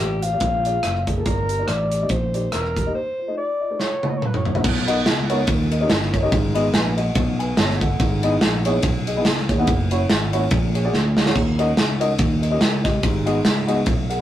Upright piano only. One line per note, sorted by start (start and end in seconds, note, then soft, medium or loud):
0.00 0.19 G2 medium
0.23 0.28 G4 soft
0.23 0.28 C5 soft
0.33 0.42 A#3 medium
0.33 0.42 F4 soft
0.33 0.42 G4 soft
0.33 0.42 D5 medium
0.43 1.04 A#2 medium
0.65 0.75 A#3 medium
0.65 0.75 F4 medium
0.65 0.75 G#4 medium
0.65 0.75 D5 medium
1.07 1.12 G#4 soft
1.07 1.12 D5 soft
1.16 1.26 A#3 medium
1.16 1.26 F4 medium
1.16 1.26 G#4 soft
1.16 1.26 A#4 medium
1.25 1.87 G2 medium
1.49 1.54 G4 soft
1.49 1.54 D5 soft
1.58 1.68 A#3 medium
1.58 1.68 D#4 soft
1.58 1.69 G4 soft
1.58 1.69 D5 medium
1.91 1.96 G4 soft
1.91 1.97 D5 soft
2.01 2.11 A#3 medium
2.01 2.11 D#4 soft
2.01 2.11 G4 soft
2.01 2.11 D#5 medium
2.33 2.43 A#3 medium
2.33 2.44 D#4 medium
2.33 2.44 G4 medium
2.33 2.44 D5 medium
2.76 2.81 G4 soft
2.76 2.81 A4 soft
2.85 2.95 A#3 medium
2.85 2.95 D#4 medium
2.85 2.95 G4 medium
2.85 2.95 D#5 medium
3.18 3.23 F4 soft
3.18 3.24 C5 soft
3.27 3.37 A3 medium
3.27 3.37 D#4 soft
3.27 3.38 F4 soft
3.27 3.38 D#5 medium
3.60 3.65 F4 soft
3.60 3.65 D#5 soft
3.70 3.79 A3 medium
3.70 3.80 D#4 soft
3.70 3.80 F4 soft
3.70 3.80 C5 medium
4.03 4.12 A#3 medium
4.03 4.13 E4 medium
4.03 4.13 F#4 medium
4.03 4.13 C#5 medium
4.45 4.50 F#4 soft
4.45 4.50 C#5 soft
4.54 4.64 A#3 medium
4.54 4.64 E4 medium
4.54 4.64 F#4 medium
4.54 4.64 E5 medium
4.64 5.25 B2 medium
4.87 4.97 B3 medium
4.87 4.97 D#4 medium
4.87 4.97 F#4 medium
4.87 4.97 A#4 medium
4.87 4.97 D#5 medium
5.29 5.39 B3 medium
5.29 5.39 D#4 medium
5.29 5.39 F#4 medium
5.29 5.39 A#4 medium
5.29 5.39 C#5 medium
5.49 6.10 D#3 medium
5.71 5.76 A#4 medium
5.71 5.76 D#5 medium
5.80 5.90 C#4 medium
5.80 5.90 D#4 medium
5.80 5.90 G4 medium
5.80 5.90 A#4 medium
5.80 5.90 D#5 medium
6.13 6.18 A#4 medium
6.13 6.18 C#5 medium
6.22 6.32 C#4 medium
6.22 6.32 D#4 medium
6.22 6.32 G4 medium
6.22 6.32 A#4 medium
6.22 6.32 D#5 medium
6.31 6.93 G#2 medium
6.54 6.64 B3 medium
6.54 6.64 D#4 medium
6.54 6.65 F#4 medium
6.54 6.65 G#4 medium
6.54 6.65 D#5 loud
6.74 6.96 B4 medium
6.74 6.96 G#5 medium
6.97 7.37 F#4 medium
6.97 7.37 D#5 medium
7.16 7.77 B2 medium
7.39 7.57 B4 medium
7.39 7.57 G#5 medium
7.58 7.80 C#5 medium
7.58 7.80 A5 medium
7.81 8.21 A4 medium
7.81 8.21 F#5 medium
8.00 8.61 G#2 medium
8.23 8.32 B3 medium
8.23 8.33 D#4 medium
8.23 8.33 E4 medium
8.23 8.33 G#4 medium
8.23 8.33 D#5 loud
8.65 8.75 B3 medium
8.65 8.75 D#4 medium
8.65 8.75 E4 medium
8.65 8.75 G#4 medium
8.65 8.75 C#5 loud
9.06 9.12 G#4 medium
9.06 9.12 D#5 medium
9.16 9.26 B3 medium
9.16 9.26 D#4 medium
9.16 9.26 E4 medium
9.16 9.26 G#4 medium
9.16 9.26 D#5 medium
9.49 9.54 G#4 medium
9.49 9.54 C#5 medium
9.58 9.68 B3 medium
9.58 9.68 D#4 medium
9.58 9.68 E4 medium
9.58 9.68 G#4 medium
9.58 9.68 F#5 medium
9.91 10.00 A#3 medium
9.91 10.01 C#4 medium
9.91 10.01 E4 medium
9.91 10.01 F#4 medium
9.91 10.01 C#5 loud
10.33 10.42 A#3 medium
10.33 10.43 C#4 medium
10.33 10.43 E4 medium
10.33 10.43 F#4 medium
10.33 10.43 C#5 loud
10.52 11.13 A#2 medium
10.74 10.79 G#4 medium
10.74 10.80 C#5 medium
10.84 10.94 A#3 medium
10.84 10.94 D4 medium
10.84 10.94 F#4 medium
10.84 10.94 G#4 medium
10.84 10.94 D5 medium
11.17 11.22 G#4 soft
11.17 11.22 D5 medium
11.26 11.35 A#3 medium
11.26 11.36 D4 medium
11.26 11.36 F#4 medium
11.26 11.36 G#4 medium
11.26 11.36 C#5 medium
11.35 11.97 D#3 medium
11.58 11.68 C#4 medium
11.58 11.68 D#4 medium
11.58 11.68 F#4 medium
11.58 11.69 A#4 medium
11.58 11.69 D#5 loud
11.99 12.10 C#4 medium
11.99 12.10 D#4 medium
11.99 12.10 F#4 medium
11.99 12.10 A#4 medium
11.99 12.10 D#5 loud
12.41 12.47 A#4 medium
12.41 12.47 D#5 medium
12.50 12.61 C#4 medium
12.50 12.61 D#4 medium
12.50 12.61 G4 medium
12.50 12.60 A#4 medium
12.50 12.61 D#5 medium
12.61 12.83 G5 medium
12.84 13.24 G4 medium
12.84 13.24 D#5 medium
13.03 13.64 G#2 medium
13.26 13.36 B3 medium
13.26 13.36 D#4 medium
13.26 13.36 F#4 medium
13.26 13.36 G#4 medium
13.26 13.36 D#5 medium
13.67 13.78 B3 medium
13.67 13.78 D#4 medium
13.67 13.78 F#4 medium
13.67 13.78 G#4 medium
13.67 13.78 D#5 medium
14.09 14.15 G#4 medium
14.09 14.15 A#4 medium
14.09 14.21 F#5 medium